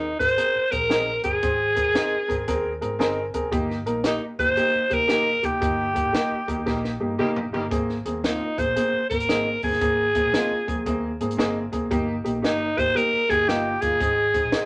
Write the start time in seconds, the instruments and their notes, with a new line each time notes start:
Already playing: fingered electric bass D#2, alto saxophone D#4
0.18 fingered electric bass G#1, upright piano C4 G#4 A#4, alto saxophone C5, kick, snare, closed hi-hat
0.28 closed hi-hat
0.37 upright piano C4 G#4 A#4, closed hi-hat
0.56 muted fingered electric bass stroke
0.71 fingered electric bass A#1, upright piano C4 G#4 A#4, alto saxophone A#4, kick, closed hi-hat
0.89 upright piano C4 G#4 A#4, clean electric guitar C4 D#4 A#4 D#5, snare, closed hi-hat
1.23 fingered electric bass G1, upright piano C4 G#4 A#4, alto saxophone G#4, kick, closed hi-hat
1.42 fingered electric bass G#1, upright piano C4 G#4 C5, kick, closed hi-hat
1.75 upright piano C4 G#4 A#4, kick, closed hi-hat
1.87 fingered electric bass G1
1.94 upright piano C4 G#4 A#4, clean electric guitar C4 D#4 A#4 D#5, snare, closed hi-hat
2.13 muted fingered electric bass stroke
2.28 fingered electric bass G#1, upright piano C4 G#4 A#4, kick, closed hi-hat
2.47 fingered electric bass D#2, upright piano C4 G#4 A#4, kick, closed hi-hat
2.81 fingered electric bass G#2, upright piano C4 G#4 A#4, closed hi-hat
2.99 fingered electric bass G1, upright piano C4 G#4 A#4 G#5, clean electric guitar C4 D#4 A#4 D#5, snare, closed hi-hat
3.34 fingered electric bass F1, upright piano C4 G#4 A#4, kick, closed hi-hat
3.51 fingered electric bass G1, upright piano A#3 D#4 G4, kick, closed hi-hat
3.71 snare
3.86 fingered electric bass A#1, upright piano A#3 D#4 A#4, closed hi-hat
4.04 upright piano A#3 D#4 G4, clean electric guitar D#4 G4 A#4 D#5, alto saxophone D#4, snare, closed hi-hat
4.39 fingered electric bass F1, upright piano A#3 D#4 G4, alto saxophone C5, kick, closed hi-hat
4.49 fingered electric bass G1
4.57 upright piano A#3 D#4 G4, closed hi-hat
4.75 muted fingered electric bass stroke
4.90 fingered electric bass F1, upright piano A#3 D#4 G4, alto saxophone A#4, kick, closed hi-hat
5.08 upright piano A#3 D#4 G4, clean electric guitar D#4 G4 A#4 D#5, snare, closed hi-hat
5.43 fingered electric bass F1, upright piano A#3 D#4 G4, alto saxophone G4, kick, closed hi-hat
5.61 fingered electric bass G1, upright piano A#3 D#4 G4, kick, closed hi-hat
5.94 upright piano A#3 D#4 G4, kick, closed hi-hat
6.05 fingered electric bass G#1
6.13 upright piano A#3 D#4 G4, clean electric guitar D#4 G4 A#4 D#5, snare, closed hi-hat
6.31 muted fingered electric bass stroke
6.48 fingered electric bass D#2, horn section D#3 G3 A#3 G4, upright piano A#3 D#4 G4, kick, closed hi-hat
6.66 fingered electric bass A#1, horn section D#3 G3 A#3 G4, upright piano A#3 D#4 G4, kick, snare
6.84 snare
7.00 fingered electric bass G2, upright piano A#3 D#4 G4
7.18 fingered electric bass F1, horn section D#3 G3 A#3 G4, upright piano A#3 D#4 G4, clean electric guitar D#4 G4 A#4 D#5, mid tom
7.36 floor tom
7.53 fingered electric bass G1, horn section D#3 G3 A#3 G4, upright piano A#3 D#4 G4, floor tom
7.70 fingered electric bass G#1, upright piano A#3 C4 G#4, kick, closed hi-hat
7.89 snare
8.05 fingered electric bass D#2, upright piano A#3 C4 G#4, closed hi-hat
8.24 upright piano A#3 C4 F4, clean electric guitar C4 D#4 A#4 D#5, alto saxophone D#4, snare, closed hi-hat
8.57 fingered electric bass G#1, upright piano A#3 C4 G#4, alto saxophone C5, kick, closed hi-hat
8.68 fingered electric bass A#1
8.76 upright piano A#3 C4 G#4, closed hi-hat
8.93 muted fingered electric bass stroke
9.10 fingered electric bass G#1, upright piano A#3 C4 A#4, alto saxophone A#4, kick, closed hi-hat
9.20 closed hi-hat
9.29 upright piano A#3 C4 G#4, clean electric guitar C4 D#4 A#4 D#5, snare, closed hi-hat
9.62 fingered electric bass G1, upright piano A#3 C4 G#4, alto saxophone G#4, kick, open hi-hat
9.72 snare
9.81 fingered electric bass G#1, upright piano A#3 C4 G#4, kick, closed hi-hat
10.15 upright piano A#3 C4 G#4, kick, closed hi-hat
10.25 fingered electric bass A#1
10.33 upright piano A#3 C4 F4, clean electric guitar C4 D#4 A#4 D#5, snare, closed hi-hat
10.51 muted fingered electric bass stroke
10.68 fingered electric bass F2, upright piano A#3 C4 G#4, kick, closed hi-hat
10.86 fingered electric bass D#2, upright piano A#3 C4 G#4, kick, closed hi-hat
11.20 fingered electric bass G#2, upright piano A#3 C4 G#4, closed hi-hat
11.31 closed hi-hat
11.37 fingered electric bass G1, upright piano A#3 C4 G#4, clean electric guitar C4 D#4 A#4 D#5, snare, closed hi-hat
11.72 fingered electric bass F1, upright piano A#3 C4 G#4, kick, closed hi-hat
11.91 fingered electric bass G1, upright piano A#3 D#4 G4, kick, closed hi-hat
12.24 fingered electric bass A#1, upright piano A#3 D#4 G4, closed hi-hat
12.42 fingered electric bass G1, upright piano A#3 D#4 G4, clean electric guitar D#4 G4 A#4 D#5, alto saxophone D#4, snare, closed hi-hat
12.77 fingered electric bass G#1, upright piano A#3 D#4 G4, alto saxophone C5, kick, closed hi-hat
12.95 upright piano A#3 D#4 G4, alto saxophone A#4, closed hi-hat
13.13 muted fingered electric bass stroke
13.29 fingered electric bass G1, upright piano A#3 D#4 G4, alto saxophone G#4, kick, closed hi-hat
13.48 upright piano A#3 D#4 F4, clean electric guitar D#4 G4 A#4 D#5, alto saxophone G4, snare, closed hi-hat
13.81 fingered electric bass G1, upright piano A#3 D#4 F4, alto saxophone G#4, kick, closed hi-hat
14.00 fingered electric bass G#1, upright piano C4 D#4 G#4, kick, closed hi-hat
14.34 upright piano C4 D#4 G#4, kick, closed hi-hat
14.44 fingered electric bass A#1
14.52 upright piano C4 D#4 G#4, clean electric guitar D#4 G#4 C5 D#5, snare, closed hi-hat